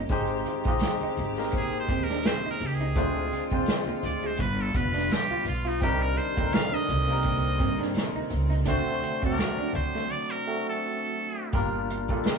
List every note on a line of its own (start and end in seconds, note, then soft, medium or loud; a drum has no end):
0.00 0.12 A#3 medium
0.00 0.12 C#4 medium
0.00 0.11 D#4 medium
0.00 0.12 G4 medium
0.00 0.12 C#5 medium
0.09 0.43 G#1 medium
0.09 2.93 D#3 medium
0.09 4.35 G#3 medium
0.09 0.52 G#3 loud
0.09 4.35 C4 medium
0.09 0.53 C4 loud
0.09 0.53 D#4 loud
0.09 2.93 G4 medium
0.09 0.53 G4 loud
0.09 0.26 G#4 medium
0.09 0.53 C5 loud
0.09 kick loud
0.09 closed hi-hat medium
0.27 closed hi-hat soft
0.46 muted clean electric guitar stroke soft
0.46 closed hi-hat medium
0.46 high conga soft
0.63 0.80 A#1 medium
0.63 1.20 G#3 medium
0.63 1.20 C4 medium
0.63 1.20 D#4 medium
0.63 1.20 G4 medium
0.63 kick medium
0.63 closed hi-hat soft
0.68 0.79 F4 medium
0.68 1.20 D#5 loud
0.79 snare loud
0.79 closed hi-hat medium
0.79 muted conga soft
1.00 1.14 D#4 medium
1.00 closed hi-hat soft
1.00 high conga medium
1.17 1.85 G#1 medium
1.17 muted clean electric guitar stroke soft
1.17 closed hi-hat medium
1.17 high conga medium
1.17 low conga medium
1.36 2.48 G#3 medium
1.36 1.44 A#3 medium
1.36 1.50 A#3 medium
1.36 2.48 D#4 medium
1.36 2.48 G4 medium
1.36 2.49 A#4 medium
1.36 snare soft
1.36 closed hi-hat soft
1.45 2.51 C4 medium
1.51 kick medium
1.51 closed hi-hat medium
1.55 1.78 G#4 medium
1.55 muted clean electric guitar stroke soft
1.80 2.05 C5 medium
1.89 2.22 D#2 medium
1.89 2.04 C4 medium
1.89 kick medium
1.89 closed hi-hat medium
1.89 high conga medium
2.03 2.28 A#4 medium
2.03 closed hi-hat soft
2.10 2.21 D4 medium
2.10 snare soft
2.23 2.49 C5 medium
2.23 snare loud
2.23 closed hi-hat medium
2.23 high conga medium
2.46 2.57 D#4 medium
2.46 high conga medium
2.51 2.68 A#4 loud
2.60 2.96 C#2 medium
2.60 muted clean electric guitar stroke medium
2.60 open hi-hat soft
2.60 low conga medium
2.67 2.76 G4 medium
2.74 3.45 G#4 medium
2.80 2.92 D#4 medium
2.80 closed hi-hat soft
2.95 3.29 D2 loud
2.95 5.79 D3 medium
2.95 3.39 G#3 medium
2.95 3.39 C4 medium
2.95 3.11 D4 medium
2.95 3.39 D4 medium
2.95 4.38 F4 medium
2.95 3.39 F4 medium
2.95 3.39 C5 loud
2.95 kick medium
2.95 closed hi-hat medium
3.32 muted clean electric guitar stroke soft
3.32 closed hi-hat medium
3.32 muted conga soft
3.32 high conga soft
3.50 3.66 D#2 medium
3.50 4.39 G#3 medium
3.50 3.64 C4 medium
3.50 4.39 C4 medium
3.50 4.40 D4 medium
3.50 4.40 F4 medium
3.50 4.40 C5 medium
3.50 kick medium
3.50 closed hi-hat soft
3.66 snare loud
3.66 closed hi-hat medium
3.66 muted conga soft
3.86 3.99 A#3 medium
3.86 closed hi-hat soft
3.86 high conga medium
4.03 4.36 D2 medium
4.03 4.28 D5 medium
4.03 muted clean electric guitar stroke soft
4.03 closed hi-hat soft
4.03 muted conga soft
4.03 high conga medium
4.03 low conga medium
4.22 4.35 G#3 medium
4.22 closed hi-hat soft
4.27 4.41 C5 medium
4.36 4.72 G1 loud
4.36 5.81 G3 medium
4.36 5.81 B3 medium
4.36 5.81 F4 medium
4.36 muted clean electric guitar stroke soft
4.36 kick medium
4.36 closed hi-hat medium
4.42 4.63 B4 loud
4.59 4.78 A4 medium
4.59 closed hi-hat soft
4.74 5.07 F1 medium
4.74 5.59 G3 medium
4.74 4.89 B3 medium
4.74 5.60 B3 medium
4.74 5.60 D4 medium
4.74 5.60 F4 medium
4.74 5.14 B4 medium
4.74 5.60 B4 medium
4.74 kick medium
4.74 closed hi-hat medium
4.74 muted conga soft
4.74 high conga medium
4.93 5.06 D4 medium
4.93 snare soft
4.93 closed hi-hat soft
5.09 snare loud
5.09 closed hi-hat medium
5.09 muted conga soft
5.09 high conga medium
5.13 5.47 G4 medium
5.30 5.42 F4 medium
5.30 high conga medium
5.45 5.82 B1 medium
5.45 5.69 F4 medium
5.45 muted clean electric guitar stroke soft
5.45 closed hi-hat medium
5.45 muted conga soft
5.45 low conga medium
5.65 5.82 D#4 medium
5.65 5.77 F4 medium
5.65 closed hi-hat soft
5.80 6.15 C2 medium
5.80 11.49 C3 medium
5.80 8.65 D#3 medium
5.80 6.25 G3 medium
5.80 8.65 A#3 medium
5.80 5.96 C4 medium
5.80 11.49 C4 medium
5.80 6.25 C4 medium
5.80 6.25 D4 medium
5.80 6.25 D#4 medium
5.80 6.03 G4 loud
5.80 6.25 A#4 loud
5.80 kick medium
5.80 closed hi-hat medium
6.02 6.19 A#4 medium
6.17 6.56 C5 loud
6.17 muted clean electric guitar stroke soft
6.17 closed hi-hat medium
6.17 muted conga soft
6.17 high conga soft
6.37 6.52 D2 medium
6.37 6.92 G3 medium
6.37 6.49 A#3 medium
6.37 6.92 C4 medium
6.37 6.92 D4 medium
6.37 6.92 D#4 medium
6.37 kick medium
6.37 closed hi-hat soft
6.41 6.45 A4 medium
6.47 6.96 A#4 medium
6.52 6.76 F5 loud
6.52 snare loud
6.52 closed hi-hat medium
6.72 6.84 D4 medium
6.72 7.81 D#5 loud
6.72 high conga medium
6.88 7.57 C2 loud
6.88 muted clean electric guitar stroke soft
6.88 closed hi-hat medium
6.88 muted conga soft
6.88 high conga medium
6.88 low conga medium
7.08 8.20 G3 medium
7.08 7.20 A#3 medium
7.08 8.20 A#3 medium
7.08 8.20 C4 medium
7.08 8.20 D#4 medium
7.08 closed hi-hat soft
7.12 8.21 A#4 medium
7.22 muted clean electric guitar stroke soft
7.22 kick medium
7.22 closed hi-hat medium
7.59 7.93 G2 medium
7.59 7.74 C4 medium
7.59 kick medium
7.59 closed hi-hat medium
7.59 muted conga soft
7.59 high conga medium
7.78 7.91 D4 medium
7.78 snare soft
7.78 closed hi-hat soft
7.94 snare loud
7.94 closed hi-hat medium
7.94 muted conga soft
7.94 high conga medium
8.15 8.27 D#4 medium
8.15 closed hi-hat soft
8.15 high conga medium
8.30 8.65 C#2 medium
8.30 muted clean electric guitar stroke soft
8.30 closed hi-hat medium
8.30 low conga medium
8.50 8.62 D#4 medium
8.50 closed hi-hat soft
8.65 9.00 D2 loud
8.65 11.51 F#3 medium
8.65 9.09 A3 loud
8.65 9.10 C4 loud
8.65 8.81 D4 medium
8.65 9.10 D4 medium
8.65 9.10 F#4 medium
8.65 9.20 C5 medium
8.65 9.11 C5 loud
8.65 kick loud
8.65 closed hi-hat medium
9.02 muted clean electric guitar stroke soft
9.02 closed hi-hat medium
9.02 muted conga soft
9.02 high conga soft
9.21 9.38 D#2 medium
9.21 10.19 F#3 medium
9.21 9.34 C4 medium
9.21 10.20 C4 medium
9.21 10.20 D4 medium
9.21 9.72 A#4 medium
9.21 kick medium
9.21 closed hi-hat soft
9.26 10.20 F#4 medium
9.26 9.31 C5 medium
9.33 10.23 D5 medium
9.37 snare loud
9.37 closed hi-hat medium
9.57 9.70 D4 medium
9.57 high conga medium
9.73 10.08 D2 loud
9.73 10.13 C5 loud
9.73 muted clean electric guitar stroke soft
9.73 closed hi-hat medium
9.73 high conga medium
9.73 low conga medium
9.93 10.06 A3 medium
9.93 snare soft
9.93 closed hi-hat soft
10.11 10.32 D5 loud
10.31 10.66 A#4 loud
10.47 11.31 A3 medium
10.47 11.31 C4 medium
10.47 11.31 D4 medium
10.47 11.31 F#4 medium
10.47 11.32 A4 medium
10.69 11.51 A4 medium
11.53 12.05 G1 medium
11.53 11.96 G3 loud
11.53 11.96 A#3 loud
11.53 11.96 D4 medium
11.53 11.96 F4 loud
11.53 11.68 G4 medium
11.53 11.96 A#4 loud
11.53 kick loud
11.53 closed hi-hat medium
11.90 muted clean electric guitar stroke soft
11.90 closed hi-hat medium
11.90 high conga soft
12.08 12.38 G3 medium
12.08 12.38 A#3 medium
12.08 12.38 D4 medium
12.08 12.21 F4 medium
12.08 12.38 F4 medium
12.08 12.38 A4 medium
12.08 kick medium
12.08 closed hi-hat soft
12.24 snare loud
12.24 closed hi-hat medium